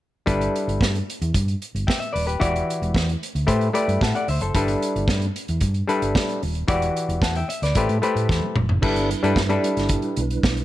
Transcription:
0.26 G1 G3 D4 E4 A4 B4, kick, closed hi-hat
0.41 closed hi-hat
0.56 closed hi-hat
0.68 G1, closed hi-hat
0.81 G2, kick, snare
0.95 closed hi-hat
1.10 closed hi-hat
1.22 E2, closed hi-hat
1.34 G2, kick, closed hi-hat
1.48 closed hi-hat
1.62 closed hi-hat
1.75 G1, closed hi-hat
1.87 E5 G5, kick, snare
2.00 E5, closed hi-hat
2.13 D#1 B4 D5, open hi-hat
2.27 G4 B4, closed hi-hat
2.40 E1 E3 E4 F#4 G4 D5, kick, closed hi-hat
2.56 closed hi-hat
2.70 closed hi-hat
2.82 E1, closed hi-hat
2.94 E2, kick, snare
3.09 closed hi-hat
3.23 closed hi-hat
3.35 D2, closed hi-hat
3.47 A2 A3 E4 G4 B4 C5, kick, closed hi-hat
3.61 closed hi-hat
3.73 A3 E4 G4 B4 D5, closed hi-hat
3.88 G2, closed hi-hat
4.01 A2 F#5 A5, kick, snare
4.15 D5 F#5, closed hi-hat
4.28 D2 C5 E5, open hi-hat
4.41 F#1 A4 C5, closed hi-hat
4.55 G1 G3 D4 E4 A4 B4, kick, closed hi-hat
4.68 closed hi-hat
4.82 closed hi-hat
4.96 G1, closed hi-hat
5.08 G2, kick, snare
5.22 closed hi-hat
5.36 closed hi-hat
5.48 E2, closed hi-hat
5.60 G2, kick, closed hi-hat
5.74 closed hi-hat
5.88 G3 D4 E4 A4 B4, closed hi-hat
6.02 G1, closed hi-hat
6.15 kick, snare
6.29 closed hi-hat
6.43 D#1, open hi-hat
6.55 closed hi-hat
6.68 E1 E3 E4 F#4 G4 D5, kick, closed hi-hat
6.82 closed hi-hat
6.96 closed hi-hat
7.08 E1, closed hi-hat
7.22 E2 F#5 A5, kick, snare
7.35 E5 G5, closed hi-hat
7.49 E5, closed hi-hat
7.62 D2 B4 D5, snare, closed hi-hat
7.75 A1 A3 E4 G4 B4 C5, kick, closed hi-hat
7.89 A2, closed hi-hat
8.02 A3 E4 G4 B4 C5, closed hi-hat
8.16 A2, closed hi-hat
8.29 E2, kick, snare
8.42 high tom
8.56 F1, mid tom
8.69 F#1, floor tom
8.81 G1 G3 D4 E4 A4 B4, kick, crash
8.96 closed hi-hat
9.11 closed hi-hat
9.23 G2 G3 D4 E4 A4 B4, closed hi-hat
9.36 kick, snare
9.49 G3 D4 E4 A4 B4, closed hi-hat
9.64 closed hi-hat
9.77 G1, snare, closed hi-hat
9.89 kick, closed hi-hat
10.02 closed hi-hat
10.16 B1, closed hi-hat
10.30 closed hi-hat
10.43 B1, kick, snare
10.57 closed hi-hat

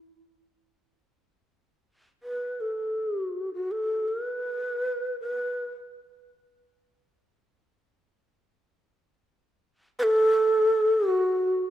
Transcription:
2.23 B4
2.61 A4
3.24 F#4
3.54 F#4
3.71 A4
4.08 B4
5.21 B4
9.99 B4
10.03 A4
11.08 F#4

